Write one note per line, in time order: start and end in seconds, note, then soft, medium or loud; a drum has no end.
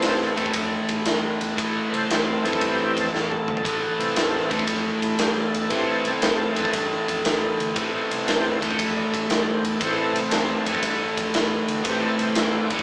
0.00 0.24 E2 medium
0.00 0.38 A2 medium
0.00 0.34 E3 medium
0.00 0.37 E3 medium
0.00 0.34 A3 soft
0.00 0.36 A3 medium
0.00 0.34 C4 medium
0.00 0.18 A4 medium
0.00 0.20 C5 medium
0.00 snare loud
0.00 ride medium
0.21 0.71 A4 medium
0.21 snare soft
0.36 0.48 E2 medium
0.36 1.56 A2 medium
0.36 0.52 E3 soft
0.36 1.57 E3 medium
0.36 1.58 A3 medium
0.36 0.52 A3 soft
0.36 0.52 C4 medium
0.36 kick medium
0.36 ride medium
0.46 kick medium
0.53 0.76 F2 medium
0.53 kick medium
0.53 ride medium
0.89 1.00 A2 medium
0.89 kick medium
0.89 ride medium
1.06 1.27 G2 medium
1.06 snare loud
1.06 ride medium
1.41 1.51 E2 medium
1.41 ride medium
1.57 1.79 A1 medium
1.57 2.46 A2 medium
1.57 2.45 E3 medium
1.57 2.44 A3 medium
1.57 kick loud
1.57 ride medium
1.89 2.03 C2 medium
1.89 2.08 A4 medium
1.89 1.94 B4 medium
1.93 2.08 C5 medium
1.93 ride medium
2.09 2.32 E2 medium
2.09 2.26 A4 medium
2.09 2.26 C5 medium
2.09 snare loud
2.09 ride medium
2.27 2.42 C4 medium
2.27 2.43 A4 medium
2.43 2.55 F2 medium
2.43 3.63 A2 medium
2.43 3.09 E3 soft
2.43 3.64 E3 medium
2.43 3.10 A3 soft
2.43 3.65 A3 medium
2.43 3.10 C4 medium
2.43 2.61 A4 medium
2.43 ride medium
2.53 kick medium
2.61 2.83 G2 medium
2.61 2.78 E4 medium
2.61 2.79 G4 medium
2.61 kick medium
2.61 ride medium
2.81 2.96 E4 medium
2.81 2.98 G4 medium
2.97 3.07 F2 medium
2.97 4.49 A4 medium
2.97 kick medium
2.97 ride medium
3.12 3.34 E2 medium
3.12 snare medium
3.31 high tom medium
3.48 3.58 D2 medium
3.48 mid tom medium
3.57 floor tom medium
3.63 3.86 A1 medium
3.63 4.52 A2 medium
3.63 4.50 E3 medium
3.63 4.49 A3 medium
3.63 kick loud
3.63 ride medium
3.98 4.10 C2 medium
3.98 4.64 E3 soft
3.98 4.64 A3 soft
3.98 4.65 C4 medium
3.98 ride medium
4.15 4.37 E2 medium
4.15 snare loud
4.15 ride medium
4.49 4.61 E2 medium
4.49 5.69 A2 medium
4.49 5.70 E3 medium
4.49 5.71 A3 medium
4.49 kick medium
4.49 ride medium
4.59 kick medium
4.67 4.89 F2 medium
4.67 kick medium
4.67 ride medium
5.02 5.13 A2 medium
5.02 5.20 E4 medium
5.02 kick medium
5.02 ride medium
5.19 5.40 G2 medium
5.19 5.37 G4 medium
5.19 snare loud
5.19 ride medium
5.39 5.71 A4 medium
5.54 5.64 E2 medium
5.54 ride medium
5.69 5.92 A1 medium
5.69 6.57 A2 medium
5.69 6.09 E3 medium
5.69 6.56 E3 medium
5.69 6.10 A3 soft
5.69 6.55 A3 medium
5.69 6.06 C4 medium
5.69 5.88 G4 medium
5.69 kick loud
5.69 ride medium
5.89 6.05 A4 medium
6.05 6.16 C2 medium
6.05 6.56 C4 medium
6.05 7.57 A4 medium
6.05 ride medium
6.22 6.44 E2 medium
6.22 snare loud
6.22 ride medium
6.55 6.67 F2 medium
6.55 7.74 A2 medium
6.55 7.76 E3 medium
6.55 6.72 E3 soft
6.55 7.76 A3 medium
6.55 6.72 A3 soft
6.55 6.73 C4 medium
6.55 ride medium
6.65 kick medium
6.73 6.95 G2 medium
6.73 kick medium
6.73 ride medium
7.08 7.18 F2 medium
7.08 kick medium
7.08 ride medium
7.25 7.47 E2 medium
7.25 snare loud
7.25 ride medium
7.60 7.70 D2 medium
7.60 ride medium
7.75 7.97 A1 medium
7.75 8.62 A2 medium
7.75 8.58 E3 medium
7.75 8.61 E3 medium
7.75 8.58 A3 soft
7.75 8.61 A3 medium
7.75 8.58 C4 medium
7.75 kick loud
7.75 ride medium
8.11 8.22 C2 medium
8.11 ride medium
8.24 8.49 E2 medium
8.24 8.28 F#5 medium
8.24 ride medium
8.29 8.45 G5 loud
8.29 snare loud
8.61 8.72 E2 medium
8.61 9.79 A2 medium
8.61 9.80 E3 medium
8.61 9.81 A3 medium
8.61 8.80 G5 medium
8.61 kick medium
8.61 ride medium
8.71 kick medium
8.78 9.00 F2 medium
8.78 8.97 E5 medium
8.78 kick medium
8.78 ride medium
8.97 9.13 D5 medium
9.14 9.24 A2 medium
9.14 9.31 E5 medium
9.14 kick medium
9.14 ride medium
9.29 9.51 G2 medium
9.29 9.48 D5 medium
9.29 snare loud
9.29 ride medium
9.49 9.65 C5 medium
9.63 9.74 E2 medium
9.63 ride medium
9.68 9.83 A4 medium
9.80 10.02 A1 medium
9.80 10.68 A2 medium
9.80 10.66 E3 medium
9.80 10.20 E3 medium
9.80 10.65 A3 loud
9.80 10.21 A3 medium
9.80 10.00 C4 medium
9.80 9.99 C5 medium
9.80 kick loud
9.80 ride medium
10.01 10.69 C4 medium
10.01 11.49 A4 medium
10.13 10.24 C2 medium
10.13 ride medium
10.31 10.53 E2 medium
10.31 snare loud
10.31 ride medium
10.65 10.76 F2 medium
10.65 11.83 A2 medium
10.65 11.84 E3 medium
10.65 10.83 E3 soft
10.65 11.85 A3 medium
10.65 ride medium
10.70 10.83 A3 soft
10.70 10.84 C4 soft
10.75 kick medium
10.82 11.04 G2 medium
10.82 kick medium
10.82 ride medium
11.17 11.28 F2 medium
11.17 kick medium
11.17 ride medium
11.34 11.55 E2 medium
11.34 snare loud
11.34 ride medium
11.68 11.79 D2 medium
11.68 ride medium
11.84 12.06 A1 medium
11.84 12.72 A2 medium
11.84 12.71 E3 medium
11.84 12.67 E3 medium
11.84 12.70 A3 medium
11.84 12.67 A3 soft
11.84 12.68 C4 medium
11.84 kick loud
11.84 ride medium
11.89 12.04 G4 loud
12.06 12.21 A4 medium
12.19 12.30 C2 medium
12.19 ride medium
12.23 12.38 C5 medium
12.35 12.57 E2 medium
12.35 12.39 C#5 medium
12.35 snare loud
12.35 ride medium
12.39 12.83 D5 medium
12.70 12.81 E2 medium
12.70 12.83 A2 medium
12.70 12.83 E3 medium
12.70 12.83 A3 medium
12.70 kick medium
12.70 ride medium
12.79 kick medium